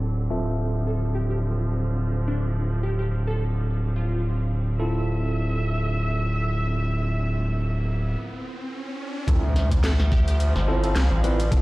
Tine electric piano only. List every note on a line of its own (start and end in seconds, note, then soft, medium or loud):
0.00 0.28 C4 medium
0.00 0.28 E4 medium
0.00 0.28 F4 medium
0.00 0.28 A4 medium
0.30 4.76 C4 medium
0.30 4.76 F4 medium
0.30 4.76 A4 medium
0.30 4.76 E5 medium
4.79 9.25 C4 medium
4.79 9.25 E4 medium
4.79 9.25 F4 medium
4.79 9.25 A4 medium
9.28 9.43 C4 medium
9.28 9.43 E4 medium
9.28 9.43 F4 medium
9.28 9.43 A4 medium
10.68 10.81 C4 medium
10.68 10.81 E4 medium
10.68 10.81 F4 medium
10.68 10.81 A4 medium
10.84 10.95 C4 medium
10.84 10.95 E4 medium
10.84 10.95 F4 medium
10.84 10.95 A4 medium
11.24 11.39 C4 medium
11.24 11.39 E4 medium
11.24 11.39 F4 medium
11.24 11.39 B4 loud
11.51 11.62 C4 medium
11.51 11.62 E4 medium
11.51 11.62 F4 medium
11.51 11.62 A4 medium